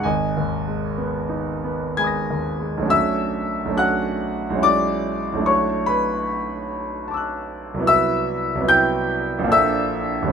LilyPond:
<<
  \new Staff \with { instrumentName = "Grand piano" } { \time 3/4 \key gis \minor \tempo 4 = 72 << { gis''2 <gis'' b'' dis''' gis''' ais'''>4 | \key b \minor e'''4 fis'''4 d'''4 | cis'''8 b''4 r8 <a'' d''' e''' fis'''>4 | e'''4 g'''4 e'''4 | } \\ { dis''2~ dis''8 r8 | e''4 fis''4 d''4 | cis''8 b'4 r4. | e''4 g''4 e''4 | } >> }
  \new Staff \with { instrumentName = "Grand piano" } { \time 3/4 \key gis \minor \tuplet 3/2 { gis,,8 dis,8 gis8 b8 dis'8 b8 gis8 dis,8 gis8 } | \key b \minor <b,, a cis' d' fis'>4 <b,, a cis' d' fis'>4 <b,, gis cis' e' fis'>4 | <b,, a d' e' fis'>2. | <c, fis b e' fis'>4 <c, fis b e' fis'>4 <ais,, eis ais d' a'>4 | }
>>